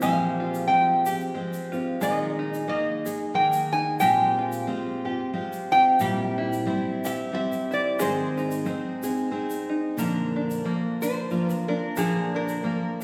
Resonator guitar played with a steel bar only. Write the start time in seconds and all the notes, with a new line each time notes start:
0.03 F5
0.68 G5
2.03 D#5
2.69 D#5
3.35 G5
3.73 G#5
4.00 G5
5.72 G5
7.06 E5
7.35 E5
7.74 D5
8.02 C5
11.02 C5
11.54 A#4
11.68 A#4
11.98 G#4
12.36 A#4